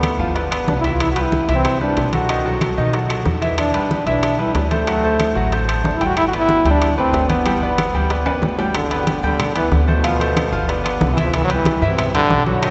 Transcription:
Already playing: upright bass D2, grand piano A3 A4 D5, trombone B3
0.03 high bongo, high conga, high timbale, claves
0.19 upright bass G1, grand piano F3 F4 F5, high bongo, high conga
0.35 grand piano B3 B4 D5, high bongo, high conga, high timbale
0.51 grand piano B3 B4 D5, high conga, high timbale, claves
0.68 upright bass C2, trombone D4, high bongo, low bongo, high conga, low timbale
0.79 trombone E4
0.84 grand piano E3 E4 E5, trombone G4, high bongo, high conga, high timbale
0.91 trombone F4
1.00 trombone E4, high bongo, high conga, high timbale, claves
1.12 trombone F#4
1.16 grand piano G3 G4 B4, high bongo, high conga, high timbale
1.23 trombone E4
1.32 high bongo, high conga
1.48 upright bass C2, grand piano E3 E4 E5, high bongo, high conga, high timbale
1.55 trombone C4
1.65 high bongo, high conga, high timbale, claves
1.80 grand piano G3 G4 B4, trombone D4, high bongo, high conga
1.97 upright bass B1, high bongo, low bongo, high conga, high timbale, low timbale
2.13 grand piano F#3 F#4 A4, trombone F#4, high conga, high timbale
2.29 grand piano D#3 D#4 D#5, high bongo, high conga, high timbale, claves
2.45 grand piano F#3 F#4 A4, high bongo, high conga
2.61 high bongo, high conga, high timbale, claves
2.77 upright bass B2, grand piano D#3 D#4 D#5, high bongo, high conga
2.93 grand piano F#3 F#4 A4, high bongo, high conga, high timbale
3.09 grand piano F#3 F#4 A4, high conga, high timbale, claves
3.25 upright bass E2, high bongo, low bongo, high conga
3.41 grand piano E3 E4 E5, high bongo, high conga, high timbale
3.58 trombone D4, high bongo, high conga, high timbale, claves
3.74 grand piano G3 G4 B4, high bongo, high conga, high timbale
3.91 trombone D4, high bongo, high conga
4.06 upright bass B1, grand piano E3 E4 E5, trombone D4, high bongo, high conga, high timbale
4.23 high bongo, high conga, high timbale, claves
4.38 grand piano G3 G4 B4, trombone E4, high bongo, high conga
4.54 upright bass D2, trombone D4, high bongo, low bongo, high conga, high timbale, low timbale
4.71 grand piano A3 A4 C5, trombone A3, high conga, high timbale
4.87 grand piano F#3 F#4 F#5, high bongo, high conga, high timbale, claves
5.04 grand piano A3 A4 C5, high bongo, high conga
5.20 high bongo, high conga, high timbale, claves
5.35 upright bass A1, grand piano F#3 F#4 F#5, high bongo, high conga
5.52 grand piano A3 A4 C5, high bongo, high conga, high timbale
5.68 grand piano A3 A4 C5, high conga, high timbale, claves
5.84 upright bass G1, trombone D4, high bongo, low bongo, high conga
5.96 trombone E4
6.01 grand piano G3 G4 G5, high bongo, high conga, high timbale
6.06 trombone F#4
6.17 trombone E4, high bongo, high conga, high timbale, claves
6.28 trombone F#4
6.33 grand piano B3 B4 D5, high bongo, high conga, high timbale
6.38 trombone E4
6.49 high bongo, high conga
6.65 upright bass D2, grand piano G3 G4 G5, high bongo, high conga, high timbale
6.70 trombone D4
6.82 high bongo, high conga, high timbale, claves
6.97 grand piano A3 B4 D5, trombone C4, high bongo, high conga
7.13 upright bass G1, high bongo, low bongo, high conga, high timbale, low timbale
7.29 grand piano B3 B4 D5, trombone B3, high conga, high timbale
7.46 grand piano G3 G4 G5, high bongo, high conga, high timbale, claves
7.62 grand piano B3 B4 D5, high bongo, high conga
7.78 high bongo, high conga, high timbale, claves
7.94 upright bass D2, grand piano G3 G4 G5, high bongo, high conga
8.10 grand piano B3 B4 D5, high bongo, high conga, high timbale
8.26 grand piano B3 B4 D5, high conga, high timbale, claves
8.42 upright bass G1, high bongo, low bongo, high conga, low timbale
8.59 grand piano G3 G4 G5, high bongo, high conga, low timbale
8.74 trombone D3, high bongo, high conga, high timbale, claves
8.90 grand piano B3 B4 D5, high conga, high timbale
9.07 trombone D3, high bongo, high conga, high timbale
9.23 upright bass D2, trombone D3, grand piano G3 G4 G5, high conga
9.40 high bongo, high conga, low conga, high timbale, claves
9.55 trombone E3, grand piano B3 B4 D5, high conga, high timbale
9.71 upright bass D2, trombone D3, high bongo, low bongo, high conga
9.87 trombone B2, grand piano A3 A4 C5, high conga
10.03 grand piano F3 F4 F5, high bongo, high conga, high timbale, claves
10.20 grand piano A3 A4 C5, high bongo, high conga, high timbale
10.37 high bongo, high conga, high timbale, claves
10.52 upright bass G1, grand piano F3 F4 F5, high bongo, high conga
10.68 grand piano B3 B4 D5, high bongo, high conga, high timbale
10.84 grand piano B3 B4 D5, high conga, high timbale, claves
11.01 upright bass C2, trombone D3, high bongo, low bongo, high conga
11.12 trombone E3
11.17 grand piano E3 E4 E5, high bongo, high conga, high timbale
11.24 trombone F3
11.33 trombone E3, high bongo, high conga, high timbale, claves
11.44 trombone F#3
11.49 grand piano G3 G4 B4, high conga, high timbale
11.55 trombone E3
11.65 high bongo, high conga, high timbale
11.82 upright bass G2, grand piano E3 E4 E5, high conga
11.87 trombone C3
11.98 high bongo, high conga, low conga, high timbale, claves
12.14 trombone D3, grand piano G3 G4 B4, high conga, low conga, high timbale
12.30 upright bass B1, high bongo, low bongo, high conga
12.46 trombone F#3, grand piano F#3 F#4 A4, high conga
12.62 grand piano D#3 D#4 D#5, high bongo, high conga, high timbale, claves

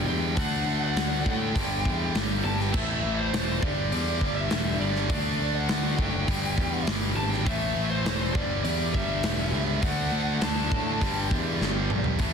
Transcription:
Already playing: distorted electric guitar G2 D3 G3
0.07 picked electric bass E2, distorted electric guitar G2 D3 G3, lead electric guitar G5
0.37 picked electric bass D2, distorted electric guitar D3 A3 D4, lead electric guitar F#5, kick, open hi-hat
0.66 picked electric bass D2
0.84 lead electric guitar F#5
0.96 picked electric bass D2, snare, open hi-hat
1.26 picked electric bass A2, kick
1.30 lead electric guitar G5
1.56 picked electric bass G1, distorted electric guitar G2 D3 G3, kick, open hi-hat
1.85 picked electric bass E2, kick
2.15 picked electric bass G1, snare, open hi-hat
2.44 picked electric bass G1, lead electric guitar A5
2.58 lead electric guitar G5, snare
2.72 picked electric bass A1, distorted electric guitar A2 E3, lead electric guitar E5, kick, crash
2.77 distorted electric guitar A3
3.03 picked electric bass A1
3.19 lead electric guitar C5
3.33 picked electric bass E1, snare, open hi-hat
3.62 picked electric bass G1, distorted electric guitar G2 D3 G3, lead electric guitar D5, kick
3.92 picked electric bass E2, lead electric guitar D5, open hi-hat
4.21 picked electric bass G1, kick
4.36 lead electric guitar E5
4.51 picked electric bass E1, snare, open hi-hat
4.80 picked electric bass G1, distorted electric guitar G2 D3 G3, lead electric guitar D5
4.95 snare
5.09 picked electric bass D2, distorted electric guitar D3 A3 D4, lead electric guitar D5, kick, open hi-hat
5.41 picked electric bass D2
5.55 lead electric guitar F#5
5.69 picked electric bass D2, snare, open hi-hat
5.98 picked electric bass F#1, lead electric guitar G5, kick
6.28 picked electric bass G1, distorted electric guitar G2 D3 G3, kick, open hi-hat
6.58 picked electric bass E2, kick
6.87 picked electric bass G1, snare, open hi-hat
7.16 picked electric bass G#1, lead electric guitar A5
7.30 lead electric guitar G5, snare
7.46 picked electric bass A1, distorted electric guitar A2 E3 A3, lead electric guitar E5, kick, open hi-hat
7.75 picked electric bass A1
7.90 lead electric guitar C5
8.05 picked electric bass E1, snare, open hi-hat
8.35 picked electric bass G1, distorted electric guitar G2 D3 G3, lead electric guitar D5, kick
8.64 picked electric bass E2, lead electric guitar D5, open hi-hat
8.94 picked electric bass G1, lead electric guitar E5, kick
9.23 picked electric bass E1, snare, open hi-hat
9.52 picked electric bass C#2, distorted electric guitar D3 G3
9.57 distorted electric guitar G2
9.82 picked electric bass D2, distorted electric guitar D3 A3 D4, lead electric guitar F#5, kick, open hi-hat
10.12 picked electric bass D2
10.41 picked electric bass D2, lead electric guitar A5, snare, open hi-hat
10.72 picked electric bass A2, kick
11.01 picked electric bass G1, distorted electric guitar G2 D3 G3, kick, open hi-hat
11.31 picked electric bass E2, kick
11.61 picked electric bass G1, snare
11.90 picked electric bass B1, mid tom
12.04 floor tom
12.19 picked electric bass A1, distorted electric guitar A2 E3 A3, kick, open hi-hat

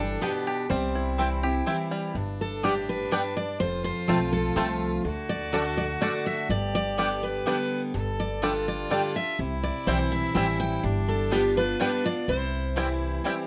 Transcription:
Already playing: upright bass G1, steel-string acoustic guitar E3 G3 A4, five-string banjo G3 G4, fiddle D4
0.00 five-string banjo D4
0.21 steel-string acoustic guitar B2 G4, mandolin B3 F4 B4 G5, five-string banjo B3
0.47 five-string banjo G4
0.69 upright bass C2, steel-string acoustic guitar C3 C5, five-string banjo G3, fiddle C4
0.95 five-string banjo E4
1.18 steel-string acoustic guitar E3 G3 C4 E4, mandolin C4 E4 C5 G5, five-string banjo C4, fiddle E4
1.43 steel-string acoustic guitar C4 E4, five-string banjo G4
1.66 steel-string acoustic guitar E3 G3 C4 E4, mandolin C4 E4 C5 G5, five-string banjo E4, fiddle G4
1.91 five-string banjo G3
2.15 upright bass G1, steel-string acoustic guitar G2, fiddle D4
2.41 steel-string acoustic guitar A4
2.63 steel-string acoustic guitar A2 G4, five-string banjo G3 B3 D4, mandolin B3 G4 D5 G5
2.89 steel-string acoustic guitar B4
3.11 steel-string acoustic guitar G2 B4, five-string banjo G3 B3 D4, mandolin B3 G4 D5 G5
3.37 steel-string acoustic guitar D5
3.60 upright bass F1, steel-string acoustic guitar F2 C5, fiddle F4
3.84 steel-string acoustic guitar C5
4.07 upright bass B1, steel-string acoustic guitar F3 A3 C4 F4, five-string banjo A3 C4 F4, mandolin C4 F4 C5 A5
4.33 steel-string acoustic guitar A4
4.56 upright bass C2, steel-string acoustic guitar F3 A3 C4 F4 A4, five-string banjo A3 C4 F4, mandolin C4 F4 C5 A5
5.05 upright bass D2, steel-string acoustic guitar D3, fiddle F#4
5.29 steel-string acoustic guitar D5
5.52 steel-string acoustic guitar D3 A3 D4 F#4 A4, mandolin A3 F#4 D5 A5, five-string banjo A3 D4
5.77 steel-string acoustic guitar D5
6.01 steel-string acoustic guitar D3 A3 D4 F#4 D5, mandolin A3 F#4 D5 A5, five-string banjo A3 D4
6.26 steel-string acoustic guitar E5
6.49 upright bass G1, steel-string acoustic guitar G2 D5, fiddle G4
6.75 steel-string acoustic guitar D5
6.98 steel-string acoustic guitar D3 G3 B3 G4, five-string banjo G3 B3 D4, mandolin B3 G4 D5 G5
7.23 steel-string acoustic guitar B4
7.46 steel-string acoustic guitar D3 G3 B3 G4 B4, five-string banjo G3 B3 D4, mandolin B3 G4 D5 G5
7.94 upright bass G1, steel-string acoustic guitar G2, fiddle A4
8.20 steel-string acoustic guitar D5
8.42 steel-string acoustic guitar D3 G3 D4 G4 A4, five-string banjo G3 D4, mandolin A3 G4 D5 G5, fiddle F4
8.68 steel-string acoustic guitar D5
8.90 steel-string acoustic guitar D3 G3 D4 G4 D5, five-string banjo G3 D4, mandolin A3 G4 D5 G5
9.15 steel-string acoustic guitar D4 G4 E5
9.39 upright bass C2, steel-string acoustic guitar C3, fiddle E4
9.63 steel-string acoustic guitar D5
9.86 upright bass B1, steel-string acoustic guitar E3 G3 C4 E4 C5, five-string banjo G3 C4 E4, mandolin C4 E4 C5 G5
10.12 steel-string acoustic guitar E5
10.35 upright bass A1, steel-string acoustic guitar E3 G3 C4 E4 E5, five-string banjo G3 C4 E4, mandolin C4 E4 C5 G5
10.60 steel-string acoustic guitar G5
10.83 upright bass G1, steel-string acoustic guitar G3, fiddle D4
11.08 steel-string acoustic guitar A4
11.31 steel-string acoustic guitar G3 B3 F4 G4, five-string banjo G3 B3 D4, mandolin B3 F4 B4 G5
11.56 steel-string acoustic guitar B3 F4 B4
11.79 steel-string acoustic guitar G3 B3 F4 B4, five-string banjo G3 B3 D4, mandolin B3 F4 B4 G5, fiddle D4
12.04 steel-string acoustic guitar B3 F4 D5
12.28 upright bass C2, steel-string acoustic guitar C3 C5, fiddle E4
12.76 steel-string acoustic guitar E3 G3 C4 E4, five-string banjo G3 C4 E4, mandolin C4 E4 C5 G5, fiddle E4
13.24 steel-string acoustic guitar E3 G3 C4 E4, five-string banjo G3 C4 E4, mandolin C4 E4 C5 G5, fiddle G4

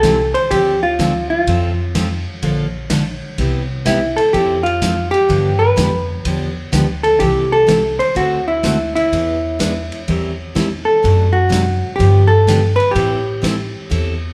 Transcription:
Already playing: upright bass C2, hollow-body jazz guitar A4
0.03 steel-string acoustic guitar C3 E3 G3 C4 E4 A4, kick, snare, hi-hat pedal, ride
0.34 hollow-body jazz guitar C5, ride
0.51 upright bass D2, steel-string acoustic guitar D3 F3 C4 D4 A4, hollow-body jazz guitar G4, kick, ride
0.83 hollow-body jazz guitar F4
0.99 steel-string acoustic guitar D3 F3 C4 D4 A4, kick, snare, hi-hat pedal, ride
1.30 hollow-body jazz guitar F4
1.47 upright bass F2, steel-string acoustic guitar F3 C4 F4 A4, kick, ride
1.95 steel-string acoustic guitar F3 C4 F4 A4, kick, snare, hi-hat pedal, ride
2.42 upright bass A#1, steel-string acoustic guitar D3 F3 A#3 D4 A4, kick, ride
2.90 steel-string acoustic guitar D3 F3 A#3 D4 A4, kick, snare, hi-hat pedal, ride
3.38 upright bass C2, steel-string acoustic guitar C3 G3 B3 E4 G4, kick, ride
3.85 steel-string acoustic guitar C3 G3 B3 E4 G4, hollow-body jazz guitar E4, kick, snare, hi-hat pedal, ride
4.16 hollow-body jazz guitar A4, ride
4.33 upright bass F2, steel-string acoustic guitar F3 C4 E4 A4, hollow-body jazz guitar G4, kick, ride
4.63 hollow-body jazz guitar F4, ride
4.82 steel-string acoustic guitar F3 C4 E4 A4, kick, snare, hi-hat pedal, ride
5.11 hollow-body jazz guitar G4, ride
5.29 upright bass G2, steel-string acoustic guitar D3 F3 B3 D4 G4, kick, ride
5.59 hollow-body jazz guitar B4
5.76 upright bass F2, steel-string acoustic guitar D3 F3 B3 D4 G4, kick, snare, hi-hat pedal, ride
6.25 upright bass E2, steel-string acoustic guitar D3 F3 B3 D4 G4, kick, ride
6.72 upright bass D2, steel-string acoustic guitar D3 F3 B3 D4 G4, kick, snare, hi-hat pedal, ride
7.03 hollow-body jazz guitar A4, ride
7.20 upright bass C2, steel-string acoustic guitar C3 E3 G3 C4 E4 A4, hollow-body jazz guitar G4, kick, ride
7.52 hollow-body jazz guitar A4
7.67 steel-string acoustic guitar C3 E3 G3 C4 E4 A4, kick, snare, hi-hat pedal, ride
7.99 hollow-body jazz guitar C5, ride
8.15 upright bass D2, steel-string acoustic guitar D3 A3 C4 F#4 A4, hollow-body jazz guitar F#4, kick, ride
8.48 hollow-body jazz guitar E4
8.63 steel-string acoustic guitar D3 A3 C4 F#4 A4, kick, snare, hi-hat pedal, ride
8.96 hollow-body jazz guitar E4, ride
9.12 upright bass E2, steel-string acoustic guitar E3 B3 D4 G#4, kick, ride
9.59 steel-string acoustic guitar E3 B3 D4 G#4, kick, snare, hi-hat pedal, ride
9.92 ride
10.08 upright bass E2, steel-string acoustic guitar E3 G3 C4 E4 A#4, kick, ride
10.55 steel-string acoustic guitar E3 G3 C4 E4 A#4, kick, snare, hi-hat pedal, ride
10.85 hollow-body jazz guitar A4
11.03 upright bass F#2, steel-string acoustic guitar C3 F#3 A3 D4 F#4, kick, ride
11.33 hollow-body jazz guitar F#4
11.49 steel-string acoustic guitar C3 F#3 A3 D4 F#4, kick, snare, hi-hat pedal, ride
11.96 steel-string acoustic guitar D3 F3 D4, hollow-body jazz guitar G4, kick
12.00 upright bass G2, steel-string acoustic guitar B3 G4, ride
12.27 hollow-body jazz guitar A4
12.47 steel-string acoustic guitar D3 F3 B3 D4 G4, kick, snare, hi-hat pedal, ride
12.76 hollow-body jazz guitar B4, ride
12.91 upright bass A2, steel-string acoustic guitar E3 G3 C4, hollow-body jazz guitar G4, kick
12.95 steel-string acoustic guitar E4 A4, ride
13.42 steel-string acoustic guitar E3 G3 C4 E4 A4, kick, snare, hi-hat pedal, ride
13.90 upright bass E2, steel-string acoustic guitar E3 G3 C4 E4 A4, kick, ride

